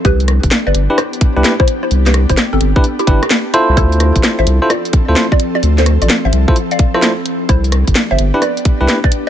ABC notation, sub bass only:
X:1
M:4/4
L:1/16
Q:"Swing 16ths" 1/4=129
K:C
V:1 name="Sub bass" clef=bass
C,,3 G,,, z G,,, G,,, z4 C,, z4 | C,,3 G,,, z G,,, G,,, z3 G,,, z4 C,, | D,,3 A,,, z A,,, C,, z4 D,, z4 | D,,3 A,,, z A,,, C,, z8 z |
C,,3 G,,, z G,,, G,,, z4 C,, z4 |]